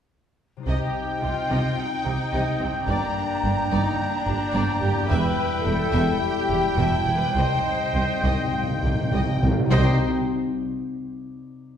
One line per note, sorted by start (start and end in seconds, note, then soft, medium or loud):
0.57 2.91 C3 soft
0.57 2.74 G3 soft
0.57 2.87 D#4 soft
0.63 2.85 C4 soft
0.63 2.85 D#4 soft
0.63 2.89 C5 soft
0.63 5.05 G5 soft
0.63 1.74 G5 medium
0.67 0.75 C2 medium
0.67 0.75 C3 soft
0.67 1.19 G4 medium
0.67 0.93 D#5 medium
0.67 1.75 D#5 soft
0.67 1.75 G5 soft
0.67 2.86 G5 soft
1.22 1.31 C2 soft
1.22 1.31 C3 soft
1.22 1.77 F4 medium
1.22 1.31 G4 soft
1.50 1.58 C2 soft
1.50 1.58 C3 medium
1.50 1.76 D#5 medium
1.78 2.61 D#4 medium
1.78 2.89 D#5 soft
1.78 2.87 G5 soft
2.05 2.14 C2 soft
2.05 2.13 C3 soft
2.05 2.14 G4 soft
2.33 2.41 C2 medium
2.33 2.41 C3 medium
2.33 2.59 D#5 medium
2.61 2.69 C2 soft
2.61 2.69 C3 soft
2.61 2.89 C4 medium
2.61 2.69 C5 soft
2.71 5.03 G2 soft
2.75 4.95 G3 soft
2.80 5.07 D4 soft
2.85 2.96 G1 medium
2.85 2.96 G2 medium
2.85 5.05 D4 soft
2.85 5.10 A#4 soft
2.85 3.98 D5 medium
2.85 3.14 D5 medium
2.89 5.06 A#3 soft
2.89 3.72 D4 medium
2.89 3.97 G5 medium
2.89 3.97 A#5 medium
2.89 5.06 A#5 soft
3.43 3.52 G1 soft
3.43 3.52 G2 soft
3.43 3.51 G4 soft
3.71 3.80 G1 medium
3.71 3.80 G2 medium
3.71 3.99 D#4 medium
3.71 3.97 D5 medium
3.98 4.82 D4 medium
3.98 5.09 D5 medium
3.98 5.08 G5 medium
3.98 5.07 A#5 medium
4.26 4.35 G1 soft
4.26 4.34 G2 medium
4.26 4.34 G4 soft
4.53 4.62 G1 medium
4.53 4.62 G2 medium
4.53 4.79 D5 medium
4.81 4.90 G1 soft
4.81 4.90 G2 soft
4.81 5.09 G4 medium
4.81 4.89 A#4 medium
4.92 7.29 E2 medium
4.96 7.21 G3 soft
5.00 7.33 E4 soft
5.05 7.30 G4 soft
5.05 6.19 E5 medium
5.09 5.19 E1 medium
5.09 5.17 E2 medium
5.09 9.38 G3 medium
5.09 7.19 E4 medium
5.09 5.64 B4 medium
5.09 5.35 E5 medium
5.09 9.46 G5 medium
5.09 9.37 G5 medium
5.09 9.46 G5 medium
5.09 6.19 G5 medium
5.09 6.18 B5 medium
5.64 5.74 E1 soft
5.64 5.73 E2 medium
5.64 5.72 G4 medium
5.64 6.21 A4 medium
5.92 6.02 E1 medium
5.92 6.01 E2 medium
5.92 6.18 E5 medium
6.20 6.76 G4 medium
6.20 7.04 E5 medium
6.20 7.05 G5 medium
6.20 6.79 B5 medium
6.49 6.58 E1 soft
6.49 6.57 E2 soft
6.49 6.57 G4 soft
6.77 6.86 E1 medium
6.77 6.85 E2 medium
6.77 6.97 F#4 medium
6.77 7.05 E5 medium
6.77 7.15 A5 medium
6.98 7.16 E4 medium
7.06 7.14 E1 soft
7.06 7.14 E2 soft
7.06 7.15 B4 soft
7.17 9.65 C3 soft
7.17 7.36 B4 medium
7.22 9.68 G3 soft
7.26 9.71 D#4 soft
7.31 9.71 G4 soft
7.35 7.43 C2 medium
7.35 9.38 D#4 medium
7.35 9.09 C5 medium
7.35 9.38 D#5 medium
7.35 7.63 D#5 medium
7.35 7.84 G5 medium
7.35 9.38 G5 medium
7.51 7.58 C3 soft
7.59 7.66 C3 soft
7.67 7.74 C3 soft
7.75 7.82 C3 soft
7.83 7.90 C3 soft
7.91 8.02 C2 soft
7.91 7.97 C3 soft
7.91 8.54 G5 medium
7.95 8.05 C3 soft
7.95 8.03 G4 soft
8.06 8.13 C3 soft
8.15 8.21 C3 soft
8.22 8.31 C2 medium
8.22 8.32 C2 medium
8.22 8.29 C3 soft
8.22 8.51 D#5 medium
8.31 8.37 C3 medium
8.39 8.46 C3 soft
8.47 8.53 C3 soft
8.53 8.62 C3 medium
8.53 9.12 F5 medium
8.63 8.70 C3 medium
8.71 8.78 C3 medium
8.79 8.86 C3 medium
8.83 8.91 C2 soft
8.83 8.93 C3 medium
8.83 8.91 G4 soft
8.95 9.02 C3 medium
9.03 9.10 C3 medium
9.11 9.20 C2 medium
9.11 9.21 C2 medium
9.11 9.18 C3 medium
9.11 9.71 D#5 medium
9.11 9.40 D#5 medium
9.19 9.26 C3 medium
9.27 9.34 C3 medium
9.35 9.42 C3 medium
9.42 9.50 C2 soft
9.42 9.51 C2 soft
9.42 9.50 C3 loud
9.42 9.50 C5 soft
9.51 9.58 C3 loud
9.59 9.66 C3 medium
9.66 10.05 C3 medium
9.66 10.05 G3 medium
9.70 10.05 C2 medium
9.70 9.99 C3 medium
9.70 9.97 G3 medium
9.70 10.05 C4 medium
9.70 10.05 D#4 medium
9.70 9.97 D#4 medium
9.70 10.05 G4 medium
9.70 9.96 C5 medium
9.70 10.05 C5 medium
9.70 10.05 D#5 medium
9.70 9.97 D#5 medium
9.70 10.04 G5 medium
9.70 9.96 G5 medium
9.70 10.05 G5 medium
9.75 10.05 G4 medium
9.75 10.05 D#5 medium